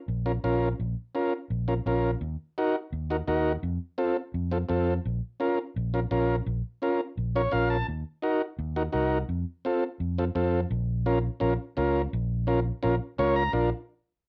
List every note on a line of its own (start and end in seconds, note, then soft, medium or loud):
0.08 0.37 A#1 medium
0.26 0.32 C#4 medium
0.26 0.32 F4 medium
0.26 0.32 A#4 medium
0.44 0.72 A#1 medium
0.44 0.69 C#4 medium
0.44 0.69 F4 medium
0.44 0.69 A#4 medium
0.80 0.94 A#1 medium
1.15 1.33 C#4 medium
1.15 1.34 F4 medium
1.15 1.34 A#4 medium
1.50 1.79 A#1 medium
1.68 1.74 C#4 medium
1.68 1.74 F4 medium
1.68 1.74 A#4 medium
1.86 2.14 A#1 medium
1.86 2.11 C#4 medium
1.86 2.11 F4 medium
1.86 2.11 A#4 medium
2.21 2.35 D#2 medium
2.58 2.76 D#4 medium
2.58 2.76 F#4 medium
2.58 2.76 A#4 medium
2.92 3.21 D#2 medium
3.10 3.16 D#4 medium
3.10 3.17 F#4 medium
3.10 3.17 A#4 medium
3.28 3.56 D#2 medium
3.28 3.52 D#4 medium
3.28 3.53 F#4 medium
3.28 3.53 A#4 medium
3.63 3.77 F2 loud
3.98 4.17 C4 medium
3.98 4.17 F4 medium
3.98 4.17 A4 medium
4.34 4.62 F2 medium
4.51 4.58 C4 medium
4.51 4.58 F4 medium
4.51 4.58 A4 medium
4.69 4.98 F2 medium
4.69 4.94 C4 medium
4.69 4.94 F4 medium
4.69 4.94 A4 medium
5.05 5.19 A#1 loud
5.40 5.59 C#4 medium
5.40 5.59 F4 medium
5.40 5.59 A#4 medium
5.76 6.04 A#1 medium
5.94 6.00 C#4 medium
5.94 6.00 F4 medium
5.94 6.00 A#4 medium
6.11 6.39 A#1 medium
6.11 6.36 C#4 medium
6.11 6.36 F4 medium
6.11 6.36 A#4 medium
6.46 6.61 A#1 loud
6.82 7.01 C#4 medium
6.82 7.01 F4 medium
6.82 7.01 A#4 medium
7.17 7.46 A#1 medium
7.35 7.42 C#4 medium
7.35 7.42 F4 medium
7.35 7.42 A#4 medium
7.35 7.52 C#5 medium
7.52 7.81 A#1 medium
7.52 7.77 C#4 medium
7.52 7.78 F4 medium
7.52 7.77 A#4 medium
7.52 7.69 F5 medium
7.70 7.87 A5 medium
7.88 8.03 D#2 medium
8.22 8.42 D#4 medium
8.22 8.42 F#4 medium
8.22 8.42 A#4 medium
8.59 8.87 D#2 medium
8.76 8.83 D#4 medium
8.76 8.83 F#4 medium
8.76 8.83 A#4 medium
8.92 9.22 C2 medium
8.92 9.18 D#4 medium
8.92 9.18 F#4 medium
8.92 9.19 A#4 medium
9.29 9.43 F2 medium
9.65 9.84 C4 medium
9.65 9.84 F4 medium
9.65 9.84 A4 medium
10.00 10.29 F2 medium
10.18 10.25 C4 medium
10.18 10.25 F4 medium
10.18 10.25 A4 medium
10.35 10.64 F2 medium
10.35 10.60 C4 medium
10.35 10.61 F4 medium
10.35 10.61 A4 medium
10.71 11.27 A#1 loud
11.06 11.19 C#4 medium
11.06 11.19 F4 medium
11.06 11.19 A#4 medium
11.40 11.56 A#1 medium
11.40 11.53 C#4 medium
11.40 11.54 F4 medium
11.40 11.54 A#4 medium
11.77 12.06 C#2 medium
11.77 12.02 C#4 medium
11.77 12.02 F4 medium
11.77 12.02 A#4 medium
12.13 12.69 A#1 loud
12.47 12.60 C#4 medium
12.47 12.60 F4 medium
12.47 12.60 A#4 medium
12.83 12.98 A#1 medium
12.83 12.95 C#4 medium
12.83 12.95 F4 medium
12.83 12.96 A#4 medium
13.18 13.47 C#2 loud
13.18 13.43 C#4 medium
13.18 13.43 F4 medium
13.18 13.44 A#4 medium
13.18 13.35 C#5 medium
13.36 13.52 A#5 medium
13.53 13.70 A#1 loud
13.53 13.70 D4 medium
13.53 13.70 F4 medium
13.53 13.70 A#4 medium